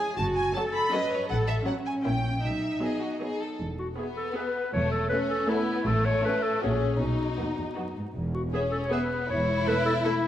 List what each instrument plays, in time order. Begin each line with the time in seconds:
Already playing: cello section G#4, violin section G#5
0.17 double bass section F#1, cello section F#4, violin section A5
0.36 violin section G#5
0.54 viola section F#3 C#4, violin section F#4 C#5 A5, cello section A4
0.73 violin section B5
0.91 viola section F#3 C#4, violin section F#4 C#5 D#5, cello section B4
1.11 violin section C#5
1.28 double bass section A1, cello section A4, violin section F#5
1.48 violin section E5
1.67 viola section F#3 C#4, cello section C#4, violin section F#4 C#5 F#5
1.86 violin section G#5
2.05 double bass section A#1, viola section A#3 C#4, violin section E4 E5 G5
2.44 double bass section B1, cello section D#4, violin section E5
2.81 viola section F#3 B3, violin section G#4 D#5
3.03 violin section F#4
3.21 viola section F#3 B3, violin section G#4
3.41 violin section A4
3.60 double bass section E1, cello section E2
3.79 clarinet F#4
3.98 violin section B3 E5, viola section B3 G#4, clarinet G#4
4.17 clarinet A4
4.35 viola section B3 G#4, clarinet B4, violin section E5
4.73 double bass section E1, cello section E2, violin section A3, clarinet C#5
4.92 clarinet A4
5.09 viola section A3 A4, violin section C#4 E5, clarinet B4
5.30 clarinet A4
5.49 viola section A3 A4, violin section B3 E5, clarinet E4
5.87 double bass section A1, cello section A2, violin section A3, clarinet A4
6.05 clarinet C#5
6.25 viola section C#4 A4, clarinet B4, violin section E5
6.43 clarinet A4
6.62 double bass section A#1, cello section A#2, violin section C#4 E5, viola section C#4 F#4, clarinet G#4
7.00 double bass section B1, cello section B2, violin section D#4, clarinet F#4
7.39 cello section D#2, viola section B3 F#4, violin section D#5
7.58 cello section E2
7.77 cello section F#2, viola section B3 F#4, violin section D#5
7.97 cello section G#2
8.15 double bass section E1, cello section E2
8.34 clarinet F#4
8.53 viola section B3 G#4, violin section C#4 E5, clarinet G#4
8.71 clarinet A4
8.84 clarinet C#5
8.90 viola section B3 G#4, violin section B3 E5, clarinet B4
9.28 double bass section E1, cello section E2, violin section E4, clarinet C#5
9.66 viola section A3 A4, clarinet B4, violin section E5
9.86 clarinet A4
10.04 viola section A3 A4, clarinet E4, violin section E5